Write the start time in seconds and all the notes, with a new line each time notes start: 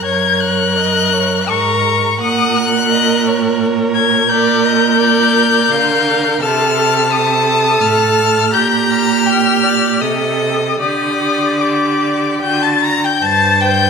0.04 F#2 A#4 C#5 G#6
0.40 F#6
0.76 D#5
1.13 C#5
1.49 G#2 A#4 A#5 C#6
2.20 A#2 A#4 F#5 D#6
2.56 F#6
2.91 D#5
3.27 C#5
3.95 G#6
4.29 A#2 A#4 D5 G6
4.65 D#5
4.99 D5
5.70 D3 F5
6.41 C3 A4 A5 F6
6.76 A5
7.12 A4 D#6
7.82 A2 F6
8.53 A#2 G4 A#5 G6
8.90 F6
9.26 G5
9.63 D5
10.00 C3 A4 D#5 D#6
10.80 D3 G4 D5 D#6
11.61 G4 D6
12.41 D3 F#4 G5 G6
12.62 A5 A6
12.83 A#5 A#6
13.04 G5 G6
13.22 G2 C5 A5 A6
13.61 G5 G6